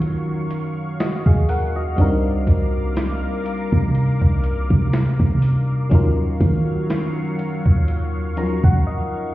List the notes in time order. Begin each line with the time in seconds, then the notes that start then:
Already playing: D#3 F#3 C#4 D#4 F4 A#4 C#6
0.01 F5, closed hi-hat
0.51 closed hi-hat
1.00 F#4 D#5, snare, closed hi-hat
1.26 D#2 G#4 F5, kick
1.49 A#4 F#5, open hi-hat
1.76 F#4 D#5
1.96 C2 G3 C4 D4 D#4 A#4 D6, kick, closed hi-hat
2.02 A#4
2.47 C2, kick, closed hi-hat
2.96 snare, closed hi-hat
3.46 closed hi-hat
3.72 C3, kick
3.95 closed hi-hat
4.21 C2, kick
4.44 closed hi-hat
4.70 C3, kick
4.93 snare, closed hi-hat
5.19 C3, kick
5.42 open hi-hat
5.90 D#2 F#3 C#4 D#4 F4 F5 C#6, kick, closed hi-hat
5.95 A#4
6.40 D#3, kick, closed hi-hat
6.90 snare, closed hi-hat
7.39 closed hi-hat
7.66 D#2, kick
7.88 closed hi-hat
8.37 F3 C#4 D#4 F4 A#4 A#5, closed hi-hat
8.43 F#3
8.64 D#2 F#5, kick
8.87 D#5